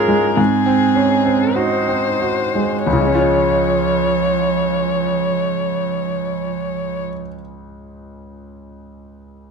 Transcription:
Already playing: G#2 C#4 D#4 F4 G#4 A#4
0.08 G#3
0.35 G#2 C4 G#4
0.66 C4
0.95 C#4
1.26 C4
1.55 D#4 F#4 C5
1.88 C4
2.22 F#4
2.55 G#3
2.84 C#2 F3 C#5
2.93 C#3
3.00 G#3
3.07 C#4
3.15 F4
3.21 C#5

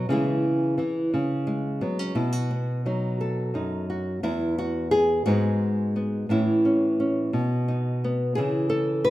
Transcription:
0.09 C#3 E3 G#3 E4 G#4
0.78 E3 E4
1.14 C#3
1.47 G#3
1.81 F#3 B3
1.99 C#4
2.15 B2 E4
2.33 F#4
2.51 B3
2.86 F#3 D#4
3.21 A4
3.54 F#2 D#4
3.90 F#4
4.23 E2 E4
4.58 F#4
4.91 G#4
5.26 G#2 G#3 B3 D#4 F#4
5.96 B3
6.29 A2 E3 C#4 E4
6.65 C#4
7.00 C#4
7.33 B2
7.68 D#4
8.04 B3
8.35 C#3 E3 E4 G#4
8.70 A4
9.04 B4

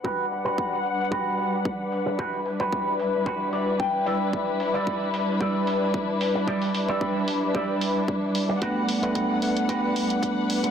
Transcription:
0.04 G3 D4 F#4 G4 B4 F#5, kick
0.31 open hi-hat
0.45 F#4 G4 B4
0.58 kick
0.85 open hi-hat
1.11 F#4 G4 B4, kick
1.38 open hi-hat
1.65 kick
1.92 open hi-hat
2.06 muted clean electric guitar stroke
2.19 E4 F#4 G4 B4, kick
2.33 open hi-hat
2.46 open hi-hat
2.60 F#4 G4 B4, kick
2.73 kick
2.99 open hi-hat
3.26 F#4 G4 B4, kick
3.53 D5, open hi-hat
3.80 G5, kick
4.06 G3 E4 G4 D5, open hi-hat
4.33 kick
4.60 open hi-hat
4.74 G3 E4 G4 D5
4.87 kick
5.14 open hi-hat
5.40 G3 E4 G4 D5, kick
5.67 open hi-hat
5.94 kick
6.21 open hi-hat
6.35 muted clean electric guitar stroke
6.47 G3 E4 G4 D5, kick
6.62 open hi-hat
6.75 open hi-hat
6.88 G3 E4 G4 D5, kick
7.01 kick
7.28 open hi-hat
7.54 G3 E4 G4 D5, kick
7.81 open hi-hat
8.08 kick
8.35 open hi-hat
8.49 muted clean electric guitar stroke
8.61 A3 B3 D4 F#4 G4 B4 F#5, kick, closed hi-hat
8.89 open hi-hat
9.02 A3 B3 D4 F#4 G4 B4 F#5, closed hi-hat
9.15 kick, closed hi-hat
9.41 A3 B3 D4 F#5, open hi-hat
9.57 closed hi-hat
9.68 F#4 G4 B4, kick, closed hi-hat
9.96 open hi-hat
10.10 closed hi-hat
10.23 kick, closed hi-hat
10.50 open hi-hat
10.63 muted clean electric guitar stroke, closed hi-hat

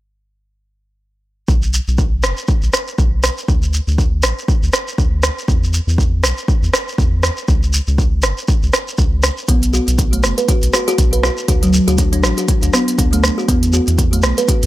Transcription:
1.48 B1, kick, shekere
1.63 shekere
1.74 shekere
1.88 B1, shekere
1.98 kick, shekere
2.23 F#1, cross-stick, shekere
2.37 shekere
2.48 kick, shekere
2.63 B1, shekere
2.73 cross-stick, shekere
2.88 shekere
2.98 B1, kick, shekere
3.23 cross-stick, shekere
3.38 shekere
3.48 D2, kick, shekere
3.63 shekere
3.74 shekere
3.87 D2, shekere
3.98 kick, shekere
4.23 A1, cross-stick, shekere
4.38 shekere
4.48 kick, shekere
4.63 D2, shekere
4.73 cross-stick, shekere
4.88 shekere
4.98 D2, kick, shekere
5.23 cross-stick, shekere
5.38 shekere
5.48 E2, kick, shekere
5.64 shekere
5.73 shekere
5.87 E2, shekere
5.98 kick, shekere
6.23 B1, cross-stick, shekere
6.38 shekere
6.48 kick, shekere
6.62 E2, shekere
6.74 cross-stick, shekere
6.88 shekere
6.98 E2, kick, shekere
7.23 cross-stick, shekere
7.37 shekere
7.48 C#2, kick, shekere
7.63 shekere
7.73 shekere
7.87 C#2, shekere
7.98 kick, shekere
8.23 G1, cross-stick, shekere
8.38 shekere
8.48 kick, shekere
8.63 C#2, shekere
8.73 cross-stick, shekere
8.88 shekere
8.98 C#2, kick, shekere
9.23 cross-stick, shekere
9.38 shekere
9.48 B1 B3, kick, closed hi-hat, shekere
9.63 closed hi-hat, shekere
9.73 F#4, shekere
9.88 B1, closed hi-hat, shekere
9.98 kick, closed hi-hat, shekere
10.13 A3, closed hi-hat
10.23 F#1, cross-stick, shekere
10.38 B4, closed hi-hat, shekere
10.48 F#4, kick, closed hi-hat, shekere
10.62 B1, closed hi-hat, shekere
10.73 F#4, cross-stick, shekere
10.88 F#4, closed hi-hat, shekere
10.98 B1, kick, closed hi-hat, shekere
11.13 B4, closed hi-hat
11.23 E4, cross-stick, shekere
11.38 shekere
11.48 D2 F#4, kick, closed hi-hat, shekere
11.63 F#3, closed hi-hat, shekere
11.73 shekere
11.88 D2 F#4, closed hi-hat, shekere
11.98 D4, kick, closed hi-hat, shekere
12.13 D4, closed hi-hat
12.23 A1 E4, cross-stick, shekere
12.38 F#4, closed hi-hat, shekere
12.48 kick, closed hi-hat, shekere
12.62 D2 D4, closed hi-hat, shekere
12.73 B3, cross-stick, shekere
12.88 closed hi-hat, shekere
12.98 D2 D4, kick, closed hi-hat, shekere
13.13 A3, closed hi-hat
13.24 cross-stick, shekere
13.38 F#4, shekere
13.48 E2 B3, kick, closed hi-hat, shekere
13.63 closed hi-hat, shekere
13.73 F#4, shekere
13.87 E2, closed hi-hat, shekere
13.98 kick, closed hi-hat, shekere
14.13 A3, closed hi-hat
14.23 B1, cross-stick, shekere
14.38 B4, closed hi-hat, shekere
14.48 F#4, kick, closed hi-hat, shekere
14.63 E2, closed hi-hat, shekere

